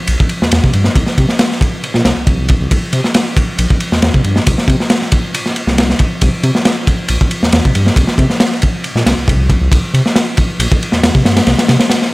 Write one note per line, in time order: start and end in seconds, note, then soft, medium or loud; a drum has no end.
0.07 0.16 A#1 medium
0.07 ride medium
0.20 kick loud
0.29 ride medium
0.42 0.50 E2 soft
0.42 snare medium
0.51 0.60 E2 medium
0.51 snare loud
0.51 ride loud
0.64 0.71 C3 medium
0.64 kick medium
0.73 0.89 G2 medium
0.73 ride medium
0.84 snare medium
0.96 1.04 C2 loud
0.96 kick loud
0.96 ride medium
1.06 snare soft
1.18 1.26 C3 medium
1.18 kick medium
1.18 ride medium
1.29 snare soft
1.39 snare loud
1.39 ride medium
1.51 snare soft
1.61 kick loud
1.61 ride medium
1.84 ride medium
1.94 2.02 A#2 medium
1.94 snare soft
2.05 2.13 C2 medium
2.05 snare medium
2.05 ride medium
2.17 2.25 C2 soft
2.27 2.55 C2 medium
2.27 kick loud
2.27 ride medium
2.48 kick loud
2.48 ride medium
2.61 2.68 C2 medium
2.71 2.79 C2 loud
2.71 kick loud
2.71 ride medium
2.93 3.01 C3 medium
2.93 ride medium
3.04 snare medium
3.14 snare loud
3.14 ride loud
3.37 kick loud
3.37 ride medium
3.58 3.67 A#1 medium
3.58 ride medium
3.70 kick medium
3.80 ride medium
3.92 4.00 E2 soft
3.92 snare medium
4.02 4.10 E2 medium
4.02 snare loud
4.02 ride medium
4.14 4.21 C3 loud
4.14 kick loud
4.24 4.40 G2 medium
4.24 ride medium
4.36 snare medium
4.47 4.55 C2 medium
4.47 kick loud
4.47 ride loud
4.58 snare soft
4.68 4.76 C3 medium
4.68 kick medium
4.68 ride medium
4.80 snare medium
4.90 snare loud
4.90 ride medium
5.02 snare soft
5.12 kick loud
5.12 ride medium
5.34 ride medium
5.46 snare soft
5.56 ride medium
5.67 5.94 C2 medium
5.67 snare soft
5.78 snare loud
5.78 ride medium
5.90 snare medium
5.99 kick medium
5.99 ride medium
6.21 6.30 C2 loud
6.21 kick loud
6.21 ride medium
6.43 6.51 C3 loud
6.43 ride medium
6.55 snare medium
6.65 snare loud
6.65 ride medium
6.87 kick loud
6.87 ride medium
7.08 7.17 A#1 medium
7.08 ride medium
7.21 kick medium
7.31 ride medium
7.43 7.51 E2 soft
7.43 snare medium
7.52 7.61 E2 medium
7.52 snare loud
7.52 ride medium
7.65 7.72 C3 medium
7.65 kick loud
7.75 7.90 G2 medium
7.75 ride medium
7.86 snare medium
7.96 8.04 C2 loud
7.96 kick loud
7.96 ride medium
8.07 snare medium
8.18 8.26 C3 medium
8.18 kick medium
8.18 ride medium
8.30 snare soft
8.40 snare loud
8.40 ride medium
8.51 snare soft
8.62 kick medium
8.62 ride medium
8.84 ride medium
8.95 9.03 A#2 medium
8.95 snare soft
9.06 9.14 C2 medium
9.06 snare medium
9.06 ride medium
9.18 9.26 C2 soft
9.28 9.56 C2 medium
9.28 kick medium
9.28 ride medium
9.50 kick medium
9.50 ride medium
9.61 9.69 C2 medium
9.72 9.80 C2 medium
9.72 kick loud
9.72 ride medium
9.94 10.02 C3 medium
9.94 ride medium
10.06 snare medium
10.16 snare loud
10.16 ride medium
10.37 kick loud
10.37 ride medium
10.59 10.67 A#1 medium
10.59 ride medium
10.72 kick loud
10.83 ride medium
10.92 11.01 E2 soft
10.92 snare medium
11.03 11.11 E2 medium
11.03 snare loud
11.03 ride medium
11.15 11.22 C3 medium
11.15 kick medium
11.25 11.40 G2 medium
11.25 snare loud
11.25 ride medium
11.37 snare loud
11.37 ride medium
11.47 11.55 C2 loud
11.47 snare medium
11.47 ride medium
11.59 snare loud
11.59 ride medium
11.68 11.77 C3 medium
11.68 snare loud
11.68 ride medium
11.80 snare loud
11.80 ride medium
11.90 snare loud
11.90 ride loud
12.02 snare soft